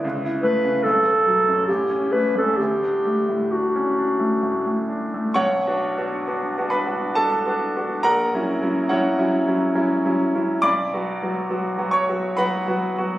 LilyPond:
<<
  \new Staff \with { instrumentName = "Clarinet" } { \time 3/4 \key d \major \tempo 4 = 69 r8 b'8 a'4 g'8 b'16 a'16 | g'4 fis'4. r8 | \key b \minor r2. | r2. |
r2. | }
  \new Staff \with { instrumentName = "Grand piano" } { \time 3/4 \key d \major r2. | r2. | \key b \minor <cis'' fis'' cis'''>4. <b' b''>8 <a' a''>4 | <ais' fis'' ais''>4 <fis' cis'' fis''>4. r8 |
<d'' b'' d'''>4. <cis'' cis'''>8 <b' fis'' b''>4 | }
  \new Staff \with { instrumentName = "Grand piano" } { \time 3/4 \key d \major cis,16 e'16 a16 cis16 b,,16 b16 fis16 fis,16 a,,16 cis'16 a16 e,16 | d,16 d'16 a16 a,16 d'16 cis'16 d'16 a16 a,16 a16 d'16 a16 | \key b \minor \tuplet 3/2 { b,,8 <b d' fis'>8 <b d' fis'>8 <b d' fis'>8 <b d' fis'>8 <b d' fis'>8 <b d' fis'>8 <b d' fis'>8 <b d' fis'>8 } | \tuplet 3/2 { ais,,8 <fis cis' e'>8 <fis cis' e'>8 <fis cis' e'>8 <fis cis' e'>8 <fis cis' e'>8 <fis cis' e'>8 <fis cis' e'>8 <fis cis' e'>8 } |
\tuplet 3/2 { b,,8 <fis b fis'>8 <fis b fis'>8 <fis b fis'>8 <fis b fis'>8 <fis b fis'>8 <fis b fis'>8 <fis b fis'>8 <fis b fis'>8 } | }
>>